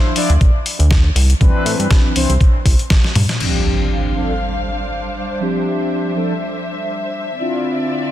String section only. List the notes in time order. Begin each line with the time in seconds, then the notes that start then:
3.41 G3 D4 C5 F5
5.41 E5
7.40 D3 C4 D5